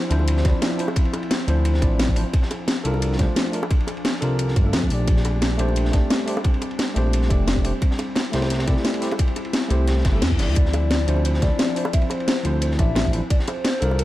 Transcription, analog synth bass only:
0.11 D2
0.45 D2
1.48 D2
1.82 A1
2.16 A1
2.85 C2
3.19 C2
4.22 C2
4.56 G1
4.73 F2
4.91 A#1
4.99 A#1
5.59 A#1
5.93 A#1
6.96 A#1
7.30 F1
7.65 F1
8.33 C2
8.68 C2
9.71 C2
10.05 G1
10.22 E2
10.39 G1
10.48 D2
11.08 D2
11.42 D2
12.45 D2
12.79 A1
13.13 A1
13.82 C2

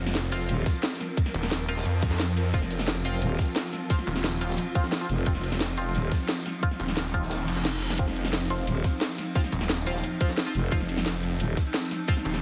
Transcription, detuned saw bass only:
Already playing: F1
0.32 F1
1.34 D#1
1.85 F2
2.54 F1
3.05 F1
4.07 D#1
5.26 F1
5.78 F1
6.80 D#1
7.31 D#1
7.48 F1
7.99 F1
8.50 F1
9.52 D#1
10.72 F1
11.23 F1
12.25 D#1

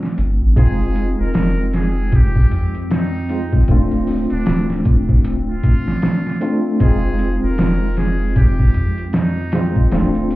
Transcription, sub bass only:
0.18 G1
0.42 A1
1.20 F1
1.35 F1
2.53 F2
3.69 D1
4.31 D1
4.47 D1
6.80 F1
7.43 F1
7.59 F1
8.76 F2
9.92 D1

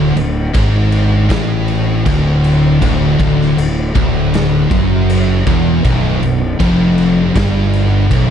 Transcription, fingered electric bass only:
Already playing: D1
0.16 D1
0.55 G#1
1.30 A1
2.06 D1
2.82 D1
3.20 D1
3.57 D1
3.95 D1
4.71 F#1
5.47 E1
5.84 B0
6.22 B0
6.60 F1
7.36 G1
8.11 B0

